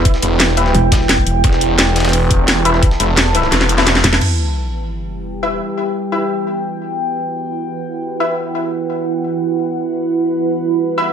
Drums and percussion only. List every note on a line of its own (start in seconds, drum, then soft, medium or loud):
0.05 kick loud
0.05 closed hi-hat medium
0.14 snare medium
0.22 closed hi-hat medium
0.40 snare loud
0.40 closed hi-hat medium
0.49 snare soft
0.57 closed hi-hat medium
0.66 snare soft
0.75 closed hi-hat medium
0.92 kick loud
0.92 snare loud
0.92 closed hi-hat medium
1.01 snare soft
1.09 snare loud
1.09 closed hi-hat medium
1.18 kick medium
1.27 closed hi-hat medium
1.44 kick loud
1.44 closed hi-hat medium
1.53 snare medium
1.61 closed hi-hat medium
1.61 closed hi-hat loud
1.79 snare loud
1.79 closed hi-hat medium
1.87 snare medium
1.96 snare medium
1.96 closed hi-hat medium
2.00 snare medium
2.00 closed hi-hat medium
2.05 snare medium
2.05 closed hi-hat medium
2.09 snare medium
2.09 closed hi-hat medium
2.13 closed hi-hat medium
2.13 open hi-hat medium
2.31 kick loud
2.31 closed hi-hat medium
2.31 closed hi-hat loud
2.48 snare loud
2.48 closed hi-hat medium
2.65 closed hi-hat loud
2.65 closed hi-hat medium
2.74 snare soft
2.83 kick loud
2.83 closed hi-hat medium
2.91 snare medium
3.00 closed hi-hat loud
3.00 closed hi-hat medium
3.17 snare loud
3.17 closed hi-hat medium
3.26 snare soft
3.35 closed hi-hat medium
3.43 snare soft
3.52 snare medium
3.52 closed hi-hat medium
3.61 snare medium
3.69 snare soft
3.69 closed hi-hat loud
3.69 closed hi-hat medium
3.78 snare medium
3.78 snare soft
3.87 snare medium
3.87 snare loud
3.87 closed hi-hat medium
3.95 snare medium
3.95 snare soft
4.04 snare medium
4.04 closed hi-hat loud
4.04 closed hi-hat medium
4.13 snare medium
4.21 crash medium